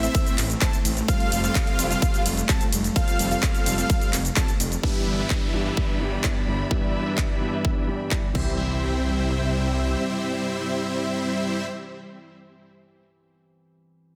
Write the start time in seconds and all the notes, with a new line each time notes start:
Already playing: A3 C4 E4
0.03 A3 C4 E4 C5 E5, closed hi-hat, shaker
0.15 kick, closed hi-hat, ride, shaker
0.27 closed hi-hat, shaker
0.38 A1, clap, open hi-hat, ride, shaker
0.50 closed hi-hat, shaker
0.61 A3 C4 E4 C5 A5, kick, clap, closed hi-hat, ride, shaker
0.73 closed hi-hat, shaker
0.85 A1, open hi-hat, ride, shaker
0.97 closed hi-hat, shaker
1.08 G3 C4 F4 A4 F5, kick, closed hi-hat, ride, shaker
1.20 closed hi-hat
1.32 F1, open hi-hat, ride, shaker
1.44 G3 C4 F4 A4 F5, closed hi-hat, shaker
1.55 kick, clap, closed hi-hat, ride, shaker
1.67 closed hi-hat
1.79 F1, open hi-hat, ride, shaker
1.90 G3 C4 F4 A4 F5, closed hi-hat, shaker
2.02 kick, closed hi-hat, ride, shaker
2.14 closed hi-hat, shaker
2.26 F1, open hi-hat, ride, shaker
2.37 closed hi-hat, shaker
2.49 G3 C4 F4 A4 A5, kick, clap, closed hi-hat, ride, shaker
2.61 closed hi-hat, shaker
2.72 F1, open hi-hat, ride, shaker
2.84 closed hi-hat, shaker
2.96 G3 C4 F4 A4 F5, kick, closed hi-hat, ride, shaker
3.08 closed hi-hat, shaker
3.19 F1, open hi-hat, ride, shaker
3.31 G3 C4 F4 A4 F5, closed hi-hat, shaker
3.43 kick, clap, closed hi-hat, ride, shaker
3.55 closed hi-hat, shaker
3.66 F1, open hi-hat, ride, shaker
3.78 G3 C4 F4 A4 F5, closed hi-hat, shaker
3.90 kick, closed hi-hat, ride, shaker
4.01 closed hi-hat, shaker
4.13 F1, clap, open hi-hat, ride, shaker
4.25 closed hi-hat, shaker
4.36 G3 C4 F4 A4 A5, kick, clap, closed hi-hat, ride, shaker
4.48 closed hi-hat, shaker
4.60 F1, open hi-hat, ride, shaker
4.72 closed hi-hat, shaker
4.82 G2 E3 G3 B3 D4 E4 G4 B4 D5 E5 B5, kick, downlifter
5.07 G1
5.19 G3 D4 E4 B4 E5
5.30 kick, clap
5.53 G1 G2 E3 B3 D4 G4
5.65 G3 D4 E4 B4 E5
5.77 kick
5.99 G1 G2 E3 B3 D4 G4
6.24 G3 D4 E4 B4 A5, kick, clap
6.47 G1
6.70 G2 E3 G3 B3 D4 E4 G4 B4 E5, kick
7.06 G3 D4 E4 B4 E5
7.18 kick, clap
7.41 G2 E3 B3 D4 G4
7.53 G3 D4 E4 B4 E5
7.65 kick
7.87 G2 E3 B3 D4 G4
8.11 G3 D4 E4 B4 A5, kick, clap
8.33 C2 C3 E3 G3 C4 E4 G4 C5 E5 G5, kick, crash, impact